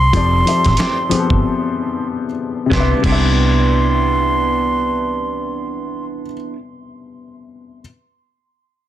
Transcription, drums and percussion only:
0.13 kick, closed hi-hat
0.47 closed hi-hat
0.65 kick, snare, closed hi-hat
0.77 snare, closed hi-hat
1.11 closed hi-hat
1.30 kick
2.71 kick, snare
3.04 kick, crash

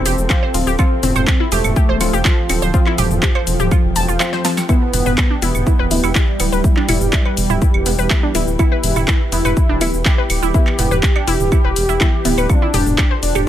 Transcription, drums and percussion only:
0.06 open hi-hat, shaker
0.18 shaker
0.30 kick, clap, claves, shaker
0.54 open hi-hat, shaker
0.67 shaker
0.79 kick, claves, shaker
1.03 mid tom, open hi-hat, shaker
1.16 mid tom, claves, shaker
1.27 kick, clap, shaker
1.52 open hi-hat, shaker
1.64 mid tom, claves, shaker
1.76 kick, shaker
2.01 open hi-hat, claves, shaker
2.13 shaker
2.25 kick, clap, shaker
2.49 open hi-hat, claves, shaker
2.62 shaker
2.74 kick, shaker
2.86 clap, claves
2.98 mid tom, open hi-hat, shaker
3.11 mid tom, shaker
3.23 kick, clap, shaker
3.35 claves
3.47 open hi-hat, shaker
3.60 mid tom, shaker
3.71 kick, claves, shaker
3.96 open hi-hat, shaker
4.08 shaker
4.20 clap, claves, shaker
4.33 snare
4.45 snare, open hi-hat, shaker
4.57 snare, claves, shaker
4.69 kick, claves, shaker
4.94 mid tom, open hi-hat, shaker
5.06 mid tom, shaker
5.18 kick, clap, claves, shaker
5.42 open hi-hat, shaker
5.55 mid tom, claves, shaker
5.67 kick, shaker
5.91 open hi-hat, shaker
6.04 claves, shaker
6.15 kick, clap, shaker
6.40 open hi-hat, claves, shaker
6.52 shaker
6.64 kick, shaker
6.77 clap
6.89 mid tom, open hi-hat, claves, shaker
7.01 mid tom, shaker
7.13 kick, clap, shaker
7.25 claves
7.37 open hi-hat, shaker
7.50 mid tom, shaker
7.62 kick, shaker
7.74 claves
7.86 open hi-hat, shaker
7.99 shaker
8.10 kick, clap, claves, shaker
8.35 open hi-hat, shaker
8.47 shaker
8.59 kick, claves, shaker
8.84 mid tom, open hi-hat, shaker
8.96 mid tom, claves, shaker
9.08 kick, clap, shaker
9.32 open hi-hat, shaker
9.45 mid tom, claves, shaker
9.57 kick, shaker
9.81 open hi-hat, claves, shaker
9.94 shaker
10.05 kick, clap, shaker
10.30 open hi-hat, claves, shaker
10.42 shaker
10.54 kick, shaker
10.67 clap, claves
10.79 mid tom, open hi-hat, shaker
10.91 mid tom, shaker
11.03 kick, clap, shaker
11.16 claves
11.28 open hi-hat, shaker
11.40 mid tom, shaker
11.52 kick, claves, shaker
11.76 open hi-hat, shaker
11.89 shaker
12.01 kick, clap, claves, shaker
12.25 open hi-hat, shaker
12.38 claves, shaker
12.49 kick, claves, shaker
12.74 mid tom, open hi-hat, shaker
12.86 mid tom, shaker
12.98 kick, clap, claves, shaker
13.23 open hi-hat, shaker
13.35 mid tom, claves, shaker

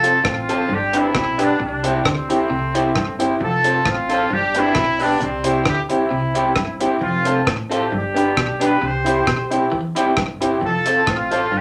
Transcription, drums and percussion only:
0.04 closed hi-hat
0.25 kick, cross-stick
0.49 closed hi-hat
0.93 closed hi-hat
1.15 kick, cross-stick
1.39 closed hi-hat
1.84 closed hi-hat
2.05 kick, cross-stick
2.30 closed hi-hat
2.75 closed hi-hat
2.95 kick, cross-stick
3.20 closed hi-hat
3.64 closed hi-hat
3.85 kick, cross-stick
4.10 closed hi-hat
4.55 closed hi-hat
4.75 kick, cross-stick
5.00 open hi-hat
5.20 hi-hat pedal
5.44 closed hi-hat
5.65 kick, cross-stick
5.90 closed hi-hat
6.35 closed hi-hat
6.56 kick, cross-stick
6.81 closed hi-hat
7.25 closed hi-hat
7.47 kick, cross-stick
7.72 closed hi-hat
8.16 closed hi-hat
8.37 kick, cross-stick
8.61 closed hi-hat
9.06 closed hi-hat
9.27 kick, cross-stick
9.52 closed hi-hat
9.96 closed hi-hat
10.17 kick, cross-stick
10.42 closed hi-hat
10.86 closed hi-hat
11.07 kick, cross-stick
11.32 closed hi-hat

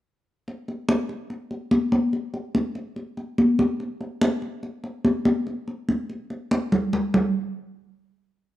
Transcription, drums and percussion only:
0.48 high conga
0.68 high conga
0.89 high conga
1.09 high conga
1.30 high conga
1.51 high conga
1.71 high conga
1.92 high conga
2.13 high conga
2.34 high conga
2.55 high conga
2.75 high conga
2.96 high conga
3.17 high conga
3.38 high conga
3.59 high conga
3.80 high conga
4.01 high conga
4.21 high conga
4.42 high conga
4.63 high conga
4.84 high conga
5.05 high conga
5.25 high conga
5.47 high conga
5.68 high conga
5.89 high conga
6.10 high conga
6.30 high conga
6.51 high conga
6.72 low conga
6.93 low conga
7.14 low conga

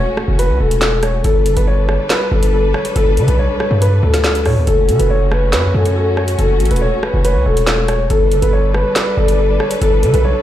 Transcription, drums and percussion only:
0.17 cross-stick
0.39 closed hi-hat
0.71 closed hi-hat
0.82 snare, clap, closed hi-hat
1.03 cross-stick, closed hi-hat
1.24 closed hi-hat
1.46 closed hi-hat
1.57 closed hi-hat
1.89 cross-stick
2.10 snare, clap, closed hi-hat
2.43 closed hi-hat
2.74 cross-stick
2.85 closed hi-hat
2.96 closed hi-hat
3.17 closed hi-hat
3.28 closed hi-hat
3.60 cross-stick
3.82 closed hi-hat
4.14 snare, closed hi-hat
4.24 snare, clap, closed hi-hat
4.35 closed hi-hat
4.45 cross-stick, open hi-hat
4.67 closed hi-hat
4.89 closed hi-hat
5.00 closed hi-hat
5.32 cross-stick
5.53 snare, clap, closed hi-hat
5.86 closed hi-hat
6.17 cross-stick
6.28 closed hi-hat
6.39 closed hi-hat
6.60 closed hi-hat
6.65 closed hi-hat
6.71 closed hi-hat
6.76 closed hi-hat
7.03 cross-stick
7.25 closed hi-hat
7.57 closed hi-hat
7.67 snare, clap, closed hi-hat
7.88 cross-stick, closed hi-hat
8.10 closed hi-hat
8.32 closed hi-hat
8.42 closed hi-hat
8.74 cross-stick
8.96 snare, clap, closed hi-hat
9.28 closed hi-hat
9.60 cross-stick
9.71 closed hi-hat
9.82 closed hi-hat
10.03 closed hi-hat
10.14 closed hi-hat

